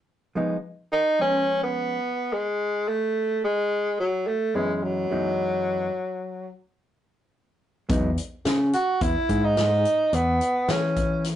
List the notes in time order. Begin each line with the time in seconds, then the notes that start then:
0.35 F3 G#3 B3 D#4
0.92 D#4
1.19 F3 G#3 B3 C#4
1.63 B3
2.33 G#3
2.88 A3
3.44 G#3
4.00 F#3
4.27 A3
4.54 F#2 E3 G#3 B3 C#4
4.75 G#3
4.83 F#3
5.10 F#2 E3 G#3 B3 D#4
7.89 E2 F#3 G#3 B3 D#4, kick, closed hi-hat
8.18 closed hi-hat
8.45 C#3, snare, closed hi-hat
8.73 F#4, closed hi-hat
9.01 E2 E4, kick, closed hi-hat
9.29 G#2, kick, closed hi-hat
9.45 D#4
9.57 G#2, snare, closed hi-hat
9.85 closed hi-hat
10.13 E2 B3, closed hi-hat
10.41 closed hi-hat
10.69 E3 C#4, snare, closed hi-hat
10.96 kick, closed hi-hat
11.24 snare, closed hi-hat